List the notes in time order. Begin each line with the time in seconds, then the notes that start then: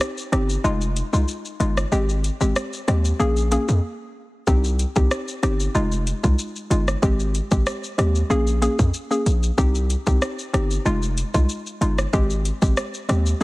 Already playing: C4 D#4 G4
0.01 cross-stick, shaker
0.18 shaker
0.32 G1 C4 D#4 G4, cross-stick, closed hi-hat, shaker
0.50 shaker
0.64 F1 G#3 D#4 F4, shaker
0.81 shaker
0.96 closed hi-hat, shaker
1.13 C2 G#3 D#4 F4, shaker
1.28 shaker
1.45 shaker
1.60 G1 G#3 D#4 F4, closed hi-hat, shaker
1.77 cross-stick, shaker
1.92 G#1 G#3 C4 G4, shaker
2.09 shaker
2.24 closed hi-hat, shaker
2.41 G#1 G#3 C4 G4, shaker
2.56 cross-stick, shaker
2.73 shaker
2.88 D#2 G#3 C4 G4, cross-stick, closed hi-hat, shaker
3.05 shaker
3.20 A#1 A#3 C#4 G#4, shaker
3.37 shaker
3.52 A#3 C#4 G#4, closed hi-hat, shaker
3.69 F2, shaker
4.47 C2 C4 D#4 G4, kick, shaker
4.64 shaker
4.79 closed hi-hat, shaker
4.96 C2 C4 D#4 G4, kick, shaker
5.11 cross-stick, shaker
5.28 shaker
5.43 G1 C4 D#4 G4, cross-stick, closed hi-hat, shaker
5.60 shaker
5.75 F1 G#3 D#4 F4, shaker
5.92 shaker
6.07 closed hi-hat, shaker
6.24 C2 G#3 D#4 F4, kick, shaker
6.39 shaker
6.56 shaker
6.70 G1 G#3 D#4 F4, closed hi-hat, shaker
6.88 cross-stick, shaker
7.02 G#1 G#3 C4 G4, kick, shaker
7.20 shaker
7.35 closed hi-hat, shaker
7.51 G#1 G#3 C4 G4, kick, shaker
7.66 cross-stick, shaker
7.84 shaker
7.98 D#2 G#3 C4 G4, cross-stick, closed hi-hat, shaker
8.15 shaker
8.30 A#1 A#3 C#4 G#4, shaker
8.47 shaker
8.62 A#3 C#4 G#4, closed hi-hat, shaker
8.79 F2, kick, shaker
8.94 shaker
9.11 A#3 C#4 G#4, shaker
9.26 A#1, closed hi-hat, shaker
9.43 shaker
9.58 C2 C4 D#4 G4, kick, shaker
9.75 shaker
9.90 closed hi-hat, shaker
10.07 C2 C4 D#4 G4, kick, shaker
10.22 cross-stick, shaker
10.39 shaker
10.53 G1 C4 D#4 G4, cross-stick, closed hi-hat, shaker
10.71 shaker
10.85 F1 G#3 D#4 F4, shaker
11.02 shaker
11.18 closed hi-hat, shaker
11.34 C2 G#3 D#4 F4, kick, shaker
11.49 shaker
11.67 shaker
11.81 G1 G#3 D#4 F4, closed hi-hat, shaker
11.98 cross-stick, shaker
12.13 G#1 G#3 C4 G4, kick, shaker
12.30 shaker
12.45 closed hi-hat, shaker
12.62 G#1 G#3 C4 G4, kick, shaker
12.77 cross-stick, shaker
12.94 shaker
13.09 D#2 G#3 C4 G4, cross-stick, closed hi-hat, shaker
13.26 shaker